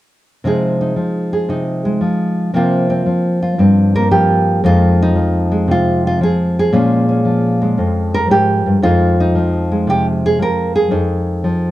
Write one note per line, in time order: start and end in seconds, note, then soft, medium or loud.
0.44 0.96 C3 medium
0.44 0.96 F3 soft
0.44 1.84 G#3 soft
0.44 0.80 D#4 soft
0.44 1.32 G#4 medium
0.81 1.48 D#4 soft
0.96 2.00 F3 soft
1.33 2.52 G#4 soft
1.49 2.01 C3 medium
1.49 2.52 D#4 soft
1.85 2.54 G#3 soft
2.01 2.54 F3 medium
2.54 3.06 C3 medium
2.54 3.05 F3 soft
2.54 3.94 A#3 medium
2.54 2.89 C4 medium
2.54 3.41 F4 medium
2.90 3.58 C4 medium
3.06 4.10 F3 soft
3.43 3.95 F4 medium
3.58 4.61 G2 medium
3.58 4.65 C4 soft
3.95 4.61 A#3 soft
3.95 4.11 A#4 medium
4.11 4.61 F3 medium
4.11 4.63 G4 medium
4.64 6.72 F2 medium
4.64 5.15 F3 soft
4.64 5.51 G#3 soft
4.64 5.00 D#4 soft
4.64 5.52 F4 medium
5.02 6.22 D#4 medium
5.15 6.20 F3 medium
5.52 6.74 G#3 soft
5.68 6.20 C3 medium
5.68 6.05 F4 medium
6.07 6.22 F4 medium
6.21 6.73 F3 medium
6.21 6.57 G#4 medium
6.59 8.14 G#4 medium
6.73 7.77 A#2 medium
6.73 7.25 F3 soft
6.73 7.61 G#3 soft
6.73 7.07 C#4 soft
7.09 8.80 C#4 soft
7.25 8.83 F3 medium
7.62 8.84 G#3 soft
7.78 8.29 F2 medium
8.14 8.30 A#4 loud
8.30 8.65 G#2 medium
8.30 8.82 G4 medium
8.66 8.82 G2 medium
8.82 10.90 F2 medium
8.82 9.35 F3 soft
8.82 9.71 G#3 soft
8.82 9.20 D#4 soft
8.82 9.70 F4 medium
9.20 10.40 D#4 medium
9.35 10.39 F3 medium
9.72 11.71 G#3 soft
9.87 10.39 C3 medium
9.87 10.06 G4 medium
10.26 10.40 G#4 medium
10.39 10.95 F3 medium
10.39 10.75 A#4 medium
10.76 11.71 G#4 medium
10.91 11.71 F2 medium
10.91 11.71 D#4 soft
11.44 11.71 F3 medium